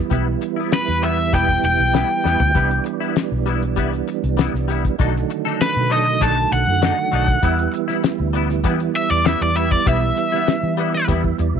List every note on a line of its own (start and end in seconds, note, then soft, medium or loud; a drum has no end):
0.00 2.51 E3 medium
0.00 2.52 G3 medium
0.00 2.52 B3 medium
0.00 2.53 E4 medium
0.10 0.34 B1 loud
0.10 0.27 G3 medium
0.10 0.27 B3 medium
0.10 0.26 E4 medium
0.10 kick loud
0.10 closed hi-hat medium
0.27 muted clean electric guitar stroke soft
0.41 muted clean electric guitar stroke soft
0.41 closed hi-hat medium
0.56 0.71 B3 soft
0.56 0.72 E4 soft
0.72 1.03 B4 loud
0.72 muted clean electric guitar stroke soft
0.72 snare loud
0.72 closed hi-hat medium
0.88 1.35 E2 medium
1.02 1.18 G3 medium
1.02 1.19 B3 medium
1.02 1.17 E4 medium
1.02 1.33 E5 loud
1.02 closed hi-hat medium
1.18 muted clean electric guitar stroke soft
1.33 1.56 E1 medium
1.33 1.49 G3 medium
1.33 1.49 B3 medium
1.33 1.48 E4 medium
1.33 1.64 G5 medium
1.33 kick medium
1.33 closed hi-hat medium
1.49 muted clean electric guitar stroke soft
1.49 kick medium
1.63 1.75 E1 medium
1.63 2.83 G5 loud
1.63 muted clean electric guitar stroke soft
1.63 closed hi-hat medium
1.79 2.02 B1 medium
1.94 2.10 G3 medium
1.94 2.10 B3 medium
1.94 2.09 E4 medium
1.94 snare loud
1.94 closed hi-hat medium
2.10 muted clean electric guitar stroke soft
2.24 2.39 E2 medium
2.24 2.40 G3 medium
2.24 2.41 B3 medium
2.24 2.39 E4 medium
2.24 snare medium
2.40 2.54 D2 medium
2.40 muted clean electric guitar stroke medium
2.40 floor tom medium
2.54 2.78 C2 loud
2.54 4.95 E3 medium
2.54 2.71 G3 medium
2.54 4.96 G3 medium
2.54 2.70 B3 medium
2.54 4.96 B3 medium
2.54 4.96 D4 medium
2.54 2.69 E4 medium
2.54 kick loud
2.54 closed hi-hat medium
2.70 muted clean electric guitar stroke soft
2.70 closed hi-hat soft
2.85 muted clean electric guitar stroke soft
2.85 closed hi-hat medium
3.00 3.16 B3 soft
3.00 3.16 E4 medium
3.00 closed hi-hat soft
3.16 muted clean electric guitar stroke medium
3.16 snare medium
3.16 closed hi-hat medium
3.32 3.77 B1 medium
3.46 3.62 G3 medium
3.46 3.63 B3 medium
3.46 3.61 E4 medium
3.46 closed hi-hat medium
3.62 muted clean electric guitar stroke medium
3.62 closed hi-hat soft
3.76 4.00 C2 loud
3.76 3.93 G3 medium
3.76 3.93 B3 medium
3.76 3.91 E4 loud
3.76 kick medium
3.76 closed hi-hat medium
3.93 muted clean electric guitar stroke medium
3.93 closed hi-hat soft
4.08 muted clean electric guitar stroke soft
4.08 closed hi-hat medium
4.24 4.47 C2 medium
4.24 closed hi-hat soft
4.37 4.54 G3 medium
4.37 4.55 B3 medium
4.37 4.53 E4 medium
4.37 snare loud
4.37 closed hi-hat medium
4.54 4.88 C2 medium
4.54 muted clean electric guitar stroke soft
4.54 snare soft
4.68 4.84 G3 medium
4.68 4.85 B3 medium
4.68 4.83 E4 medium
4.68 closed hi-hat medium
4.84 muted clean electric guitar stroke soft
4.84 kick medium
4.84 closed hi-hat soft
4.98 5.23 B1 medium
4.98 7.40 D3 medium
4.98 7.39 D#3 medium
4.98 5.15 F#3 medium
4.98 7.39 F#3 medium
4.98 7.40 A3 medium
4.98 5.15 D4 medium
4.98 5.14 D#4 medium
4.98 5.13 A4 medium
4.98 kick loud
4.98 closed hi-hat medium
5.14 muted clean electric guitar stroke medium
5.14 snare soft
5.30 muted clean electric guitar stroke soft
5.30 closed hi-hat medium
5.45 5.60 D4 soft
5.45 5.60 D#4 medium
5.45 5.60 A4 medium
5.45 snare soft
5.61 5.91 B4 loud
5.61 muted clean electric guitar stroke soft
5.61 snare loud
5.61 closed hi-hat medium
5.76 6.23 B2 medium
5.90 6.06 F#3 medium
5.90 6.07 D4 medium
5.90 6.06 D#4 medium
5.90 6.05 A4 medium
5.90 6.21 D#5 loud
5.90 closed hi-hat medium
6.06 muted clean electric guitar stroke soft
6.21 6.45 B1 medium
6.21 6.37 F#3 medium
6.21 6.37 D4 medium
6.21 6.38 D#4 medium
6.21 6.36 A4 loud
6.21 6.52 A5 medium
6.21 kick medium
6.21 closed hi-hat medium
6.38 muted clean electric guitar stroke soft
6.52 6.64 B1 medium
6.52 7.71 F#5 loud
6.52 muted clean electric guitar stroke soft
6.52 closed hi-hat medium
6.67 6.91 F#2 loud
6.82 6.98 F#3 medium
6.82 6.98 D4 medium
6.82 6.98 D#4 medium
6.82 6.97 A4 medium
6.82 snare loud
6.82 closed hi-hat medium
6.98 muted clean electric guitar stroke soft
7.12 7.36 B1 medium
7.12 7.28 F#3 medium
7.12 7.29 D4 medium
7.12 7.28 D#4 medium
7.12 7.27 A4 medium
7.12 closed hi-hat medium
7.28 muted clean electric guitar stroke soft
7.28 kick loud
7.28 closed hi-hat soft
7.41 7.66 E2 loud
7.41 11.60 E3 medium
7.41 11.60 G3 medium
7.41 7.59 G3 medium
7.41 11.60 B3 medium
7.41 7.59 B3 medium
7.41 11.60 E4 medium
7.41 7.58 E4 medium
7.41 kick loud
7.41 closed hi-hat medium
7.59 muted clean electric guitar stroke medium
7.59 closed hi-hat soft
7.73 muted clean electric guitar stroke soft
7.73 closed hi-hat medium
7.88 8.02 B3 soft
7.88 8.03 E4 medium
7.88 snare soft
7.88 closed hi-hat soft
8.03 muted clean electric guitar stroke soft
8.03 snare loud
8.03 closed hi-hat medium
8.20 8.65 D2 medium
8.33 8.50 G3 medium
8.33 8.50 B3 medium
8.33 8.48 E4 medium
8.33 closed hi-hat medium
8.49 muted clean electric guitar stroke medium
8.49 snare soft
8.49 closed hi-hat soft
8.64 8.88 E2 loud
8.64 8.80 G3 medium
8.64 8.80 B3 loud
8.64 8.78 E4 loud
8.64 kick medium
8.64 closed hi-hat medium
8.79 muted clean electric guitar stroke soft
8.79 closed hi-hat soft
8.94 9.11 E5 loud
8.94 muted clean electric guitar stroke soft
8.94 closed hi-hat medium
9.10 9.34 E2 medium
9.10 9.26 D5 medium
9.10 closed hi-hat soft
9.25 9.41 G3 medium
9.25 9.42 B3 medium
9.25 9.40 E4 medium
9.25 9.41 E5 medium
9.25 snare loud
9.25 closed hi-hat medium
9.41 9.75 E2 medium
9.41 9.57 D5 medium
9.41 muted clean electric guitar stroke soft
9.56 9.72 G3 medium
9.56 9.72 B3 medium
9.56 9.70 E4 medium
9.56 9.72 E5 loud
9.56 closed hi-hat medium
9.72 9.87 D5 loud
9.72 muted clean electric guitar stroke medium
9.72 kick loud
9.72 closed hi-hat soft
9.86 10.10 B1 loud
9.86 10.02 G3 medium
9.86 10.02 B3 medium
9.86 10.01 E4 medium
9.86 11.05 E5 loud
9.86 kick loud
9.86 closed hi-hat medium
10.04 muted clean electric guitar stroke soft
10.17 muted clean electric guitar stroke soft
10.17 closed hi-hat medium
10.32 10.48 B3 medium
10.32 10.47 E4 medium
10.32 snare soft
10.48 muted clean electric guitar stroke soft
10.48 snare loud
10.48 closed hi-hat medium
10.63 11.10 E3 loud
10.77 10.94 G3 medium
10.77 10.94 B3 medium
10.77 10.92 E4 medium
10.77 10.93 D5 medium
10.77 closed hi-hat medium
10.93 11.08 E5 medium
10.93 muted clean electric guitar stroke medium
10.93 snare soft
11.08 11.32 E2 medium
11.08 11.24 G3 medium
11.08 11.24 B3 medium
11.08 11.22 E4 medium
11.08 11.37 E5 medium
11.08 kick medium
11.08 closed hi-hat medium
11.23 muted clean electric guitar stroke medium
11.23 kick medium
11.38 11.51 E2 loud
11.38 11.54 D5 medium
11.38 muted clean electric guitar stroke soft
11.38 closed hi-hat medium
11.55 11.60 B1 loud
11.55 11.60 E5 medium